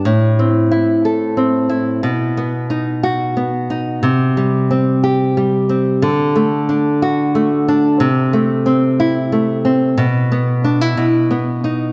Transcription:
\new Staff \with { instrumentName = "Nylon-string guitar" } { \time 6/8 \key a \dorian \tempo 4. = 60 a,8 c'8 e'8 a'8 c'8 e'8 | b,8 b8 dis'8 fis'8 b8 dis'8 | c8 g8 c'8 g'8 g8 c'8 | d8 a8 d'8 fis'8 a8 d'8 |
c8 a8 c'8 e'8 a8 c'8 | b,8 b8 d'16 e'16 b,8 b8 dis'8 | }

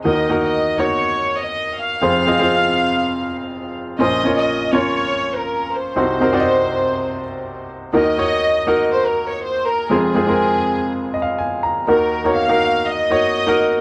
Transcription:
<<
  \new Staff \with { instrumentName = "Violin section" } { \time 4/4 \key ees \dorian \tempo 4 = 122 ees''8. ees''8. des''4~ des''16 ees''8. f''8~ | f''2.~ f''8 r8 | ees''8. ees''8. des''4~ des''16 bes'8. c''8~ | c''2.~ c''8 r8 |
ees''2 c''16 bes'8 des''16 c''8 bes'8 | aes'2. r4 | bes'4 f''4 ees''2 | }
  \new Staff \with { instrumentName = "Upright piano" } { \time 4/4 \key ees \dorian <bes ees' ges' bes'>8 <bes ees' ges' bes'>4 <bes ees' ges' des''>4.~ <bes ees' ges' des''>16 r8. | <c' f' aes' c''>8 <c' f' aes' ees''>16 <c' f' aes' c''>4.~ <c' f' aes' c''>16 r4. | <des' f' bes' c''>8 <des' f' bes' des''>4 <des' f' bes' des''>4.~ <des' f' bes' des''>16 r8. | <c' ees' ges' c''>8 <c' ees' ges' bes'>16 <c' ees' ges' d'' ees''>4.~ <c' ees' ges' d'' ees''>16 r4. |
<bes ees' ges' bes'>8 <bes ees' ges' des''>4 <bes ees' ges' bes'>4.~ <bes ees' ges' bes'>16 r8. | <aes c' f' aes'>8 <aes c' f' aes'>16 <aes c' f' bes'>4~ <aes c' f' bes'>16~ \tuplet 3/2 { <aes c' f' bes'>8. ees''16 f''8 } aes''8 bes''8 | <bes ees' ges' bes'>8. <bes ees' ges' des''>8 <bes ees' ges' bes'>4 r16 <bes ees' ges' des''>8. <bes ees' ges' bes'>8. | }
  \new Staff \with { instrumentName = "Upright piano" } { \clef bass \time 4/4 \key ees \dorian <ees, ees>1 | <f,, f,>1 | <bes,, bes,>1 | <c, c>1 |
<ees, ees>1 | <f,, f,>1 | <ees, ees>1 | }
>>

